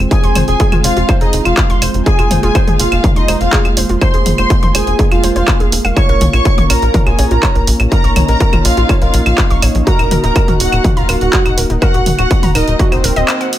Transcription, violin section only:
0.11 0.40 G#5 loud
0.48 0.77 G#5 loud
0.84 1.13 F5 loud
1.21 1.40 D#5 medium
1.46 1.75 F5 medium
2.06 2.36 G#5 loud
2.43 2.72 G#5 loud
2.80 3.09 F5 loud
3.16 3.36 D#5 medium
3.41 3.70 F5 loud
4.02 4.31 C6 medium
4.38 4.67 C6 loud
4.75 5.04 G#5 loud
5.12 5.31 F5 medium
5.36 5.65 F5 medium
5.97 6.26 C#6 loud
6.33 6.62 C#6 loud
6.70 6.99 A#5 loud
7.07 7.26 G#5 medium
7.31 7.60 A#5 medium
7.92 8.21 A#5 loud
8.28 8.58 A#5 loud
8.65 8.94 F5 loud
9.02 9.21 F5 medium
9.26 9.55 F5 medium
9.87 10.16 A#5 loud
10.24 10.53 A#5 loud
10.60 10.89 F#5 loud
10.97 11.16 F5 medium
11.21 11.50 F#5 medium
11.82 12.11 F#5 loud
12.19 12.48 F#5 loud
12.55 12.84 D#5 loud
12.92 13.11 C5 medium
13.16 13.45 C5 loud

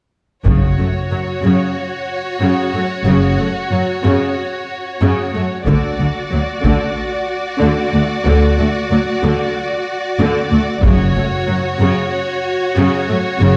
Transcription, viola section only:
0.46 0.76 C#3 soft
0.78 0.86 A3 soft
1.11 1.19 F#3 soft
1.43 1.73 C#3 soft
2.41 2.72 C#3 soft
2.74 2.82 A3 soft
3.07 3.37 C#3 soft
3.39 3.47 A3 soft
3.72 3.80 F#3 soft
4.04 4.34 C#3 soft
5.01 5.32 C#3 medium
5.34 5.42 A3 soft
5.66 5.96 D3 soft
5.99 6.07 A3 soft
6.31 6.39 F#3 soft
6.63 6.94 D3 medium
7.60 7.91 D3 soft
7.93 8.01 A3 soft
8.25 8.56 D3 medium
8.58 8.66 A3 soft
8.91 8.99 F#3 soft
9.23 9.53 D3 medium
10.20 10.50 D3 medium
10.52 10.60 A3 soft
10.84 11.14 C#3 medium
11.15 11.23 A3 soft
11.48 11.56 F#3 soft
11.80 12.10 C#3 medium
12.76 13.07 C#3 medium
13.08 13.16 A3 soft
13.40 13.57 C#3 medium

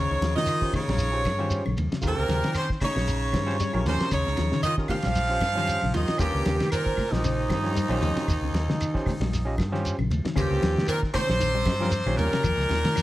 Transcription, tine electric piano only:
0.62 0.80 C#4 medium
0.62 0.80 F4 medium
0.62 0.80 G4 medium
0.62 0.80 C5 medium
1.12 1.21 C#4 medium
1.12 1.22 F4 medium
1.12 1.22 G4 medium
1.12 1.22 C5 medium
1.39 1.62 C#4 loud
1.39 1.63 F4 medium
1.39 1.62 G4 loud
1.39 1.63 C5 loud
2.01 2.41 C#3 medium
2.01 2.41 F4 medium
2.01 2.41 G4 medium
2.01 2.42 A#4 medium
3.33 3.38 G4 medium
3.33 3.39 C5 loud
3.46 3.55 C#4 loud
3.46 3.56 F4 medium
3.46 3.56 G4 medium
3.46 3.56 C5 loud
3.73 4.09 C#4 medium
3.73 4.09 F4 medium
3.73 4.10 G4 medium
3.73 4.10 A#4 medium
4.78 4.96 C#4 medium
4.78 4.96 F4 medium
4.78 4.96 G4 medium
4.78 4.96 A#4 medium
5.29 5.38 C#4 medium
5.29 5.38 F4 medium
5.29 5.39 G4 medium
5.29 5.39 C5 medium
5.55 5.79 C#4 loud
5.55 5.79 F4 loud
5.55 5.80 G4 medium
5.55 5.80 C5 loud
6.18 6.57 C#4 medium
6.18 6.57 F4 medium
6.18 6.58 G4 medium
6.18 6.58 A#4 loud
7.49 7.55 G4 medium
7.49 7.55 C5 medium
7.63 7.72 C#4 medium
7.63 7.72 F4 medium
7.63 7.73 G4 medium
7.63 7.73 C#5 medium
7.89 8.26 C#4 loud
7.89 8.26 F4 medium
7.89 8.26 G4 medium
7.89 8.26 C5 loud
8.94 9.12 C#4 medium
8.94 9.12 F4 medium
8.94 9.12 G4 medium
8.94 9.13 C5 medium
9.45 9.54 C#4 loud
9.45 9.55 F4 medium
9.45 9.55 G4 medium
9.45 9.55 D#5 loud
9.72 9.95 C#4 loud
9.72 9.95 F4 medium
9.72 9.96 G4 loud
9.72 9.96 C5 loud
10.36 10.74 C#4 medium
10.36 10.74 F4 medium
10.36 10.75 G4 medium
10.36 10.75 C5 loud
11.66 11.72 G4 medium
11.66 11.73 D#5 loud
11.81 11.89 C#4 loud
11.81 11.89 F4 loud
11.81 11.90 G4 loud
11.81 11.90 A#4 loud
12.06 12.42 C#4 medium
12.06 12.42 F4 medium
12.06 12.43 G4 medium
12.06 12.43 C#5 medium

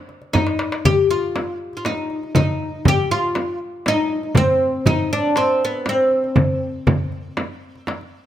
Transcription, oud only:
0.33 0.85 D#4 medium
0.85 1.10 G4 medium
1.11 1.57 F4 medium
1.77 1.84 F4 soft
1.86 2.32 D#4 medium
2.36 2.87 D#4 medium
2.88 3.10 G4 medium
3.11 3.57 F4 medium
3.88 4.38 D#4 medium
4.37 4.88 C4 medium
4.87 5.12 D#4 medium
5.13 5.36 D4 medium
5.37 5.62 C4 medium
5.65 5.89 B3 medium
5.89 8.26 C4 medium

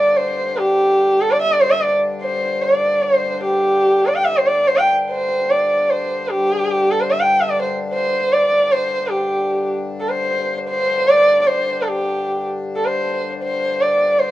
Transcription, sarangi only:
0.00 0.18 D5 medium
0.17 0.60 C5 medium
0.59 1.22 G4 medium
1.21 1.32 A4 medium
1.31 1.41 D5 medium
1.41 1.53 E5 medium
1.52 1.62 D5 medium
1.61 1.72 C5 medium
1.71 1.83 E5 medium
1.82 1.92 D5 medium
2.22 2.64 C5 medium
2.63 3.04 D5 medium
3.02 3.44 C5 medium
3.44 4.08 G4 medium
4.07 4.18 D5 medium
4.16 4.27 G5 medium
4.26 4.39 E5 medium
4.37 4.49 C5 medium
4.47 4.69 D5 medium
4.68 4.79 C5 medium
4.77 4.88 G5 medium
5.11 5.52 C5 medium
5.51 5.92 D5 medium
5.90 6.32 C5 medium
6.31 6.93 G4 medium
6.91 7.02 A4 medium
7.01 7.13 C5 medium
7.12 7.22 E5 medium
7.21 7.42 G5 medium
7.41 7.53 E5 medium
7.51 7.61 D5 medium
7.61 7.71 C5 medium
7.93 8.34 C5 medium
8.33 8.73 D5 medium
8.71 9.12 C5 medium
9.10 9.70 G4 medium
10.00 10.11 A4 medium
10.09 10.59 C5 medium
10.69 11.10 C5 loud
11.09 11.41 D5 loud
11.42 11.49 D5 medium
11.47 11.83 C5 medium
11.82 11.90 A4 medium
11.88 12.46 G4 medium
12.76 12.87 A4 medium
12.85 13.33 C5 medium
13.44 13.82 C5 medium
13.81 14.21 D5 medium
14.19 14.31 C5 medium

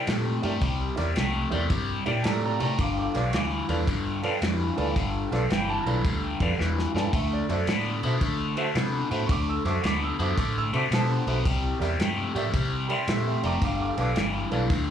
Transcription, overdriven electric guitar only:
0.07 0.40 C3 medium
0.07 0.40 A3 loud
0.43 0.60 C3 medium
0.43 0.60 A3 medium
0.62 0.94 C3 medium
0.62 0.95 G3 medium
0.98 1.14 C3 medium
0.98 1.14 G3 medium
1.15 1.48 C3 medium
1.15 1.48 A3 medium
1.52 1.68 C3 medium
1.52 1.69 A3 medium
1.70 2.03 C3 medium
1.70 2.03 G3 loud
2.06 2.23 C3 medium
2.06 2.23 G3 medium
2.24 2.57 C3 medium
2.24 2.57 A3 loud
2.60 2.77 C3 medium
2.60 2.77 A3 medium
2.78 3.11 G2 medium
2.78 3.11 D3 medium
3.14 3.31 G2 medium
3.14 3.31 D3 medium
3.33 3.65 G2 medium
3.33 3.66 E3 medium
3.69 3.85 G2 medium
3.69 3.86 E3 medium
3.88 4.20 G2 medium
3.88 4.20 D3 medium
4.24 4.40 G2 medium
4.24 4.40 D3 medium
4.42 4.74 G2 loud
4.42 4.74 E3 loud
4.78 4.94 G2 medium
4.78 4.95 E3 medium
4.96 5.28 G2 medium
4.96 5.29 D3 medium
5.32 5.49 G2 medium
5.32 5.49 D3 medium
5.51 5.83 G2 medium
5.51 5.83 E3 loud
5.86 6.03 G2 medium
5.86 6.03 E3 medium
6.05 6.37 G2 medium
6.05 6.37 D3 loud
6.40 6.57 G2 medium
6.40 6.57 D3 medium
6.59 6.91 G2 medium
6.59 6.91 E3 loud
6.95 7.11 G2 medium
6.95 7.11 E3 medium
7.13 7.45 D3 medium
7.13 7.45 A3 medium
7.49 7.65 D3 medium
7.49 7.66 A3 medium
7.68 8.00 D3 medium
7.68 8.00 B3 medium
8.03 8.20 D3 medium
8.03 8.20 B3 medium
8.22 8.54 D3 medium
8.22 8.54 A3 medium
8.57 8.74 D3 medium
8.57 8.74 A3 medium
8.75 9.08 D3 medium
8.75 9.08 B3 loud
9.11 9.27 D3 medium
9.11 9.28 B3 loud
9.29 9.62 D3 medium
9.29 9.62 A3 medium
9.65 9.82 D3 medium
9.65 9.82 A3 medium
9.83 10.16 D3 medium
9.83 10.16 B3 loud
10.19 10.36 D3 medium
10.19 10.36 B3 medium
10.37 10.70 D3 medium
10.37 10.70 A3 medium
10.73 10.90 D3 medium
10.73 10.90 A3 medium
10.91 11.24 D3 loud
10.91 11.24 B3 loud
11.27 11.44 D3 medium
11.27 11.44 B3 medium
11.45 11.78 C3 medium
11.45 11.78 G3 loud
11.82 11.98 C3 medium
11.82 11.98 G3 medium
12.00 12.32 C3 medium
12.00 12.32 A3 medium
12.35 12.52 C3 medium
12.35 12.52 A3 medium
12.54 12.86 C3 medium
12.54 12.87 G3 medium
12.90 13.06 C3 medium
12.90 13.06 G3 medium
13.08 13.40 C3 loud
13.08 13.41 A3 loud
13.44 13.60 C3 medium
13.44 13.61 A3 loud
13.62 13.94 G2 medium
13.62 13.95 D3 medium
13.98 14.14 G2 medium
13.98 14.15 D3 medium
14.16 14.48 G2 medium
14.16 14.49 E3 medium
14.52 14.69 G2 medium
14.52 14.69 E3 medium
14.70 14.90 G2 loud
14.70 14.90 D3 loud

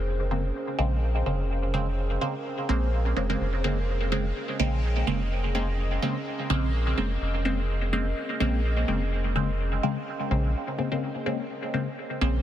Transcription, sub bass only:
0.00 0.52 F1 loud
0.79 1.23 A#1 loud
1.26 2.18 F1 medium
2.69 3.13 A#1 loud
3.17 3.36 F1 medium
3.40 4.32 F1 loud
4.60 5.04 A#1 loud
5.07 5.99 F1 medium
6.50 6.94 A#1 loud
6.98 7.17 F1 medium
7.21 8.13 F1 loud
8.41 8.85 A#1 medium
8.88 9.80 F1 medium
10.31 10.55 A#1 loud
12.21 12.42 A#1 loud

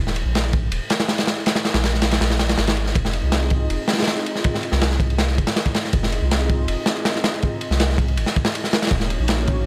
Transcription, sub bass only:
0.00 0.24 D#1 loud
0.25 0.70 A#1 loud
0.71 0.80 D#1 medium
1.74 2.19 A#1 medium
2.21 2.57 A#1 medium
2.58 2.94 G#1 loud
2.95 3.22 F1 loud
3.23 3.68 C2 medium
3.70 3.78 F1 medium
4.72 5.40 C2 medium
5.38 5.46 F1 loud
5.93 6.20 F1 loud
6.21 6.67 C2 medium
6.68 6.76 F1 loud
7.70 8.18 C2 medium
8.17 8.25 G#1 loud
8.91 9.18 D#1 loud
9.19 9.65 A#1 loud

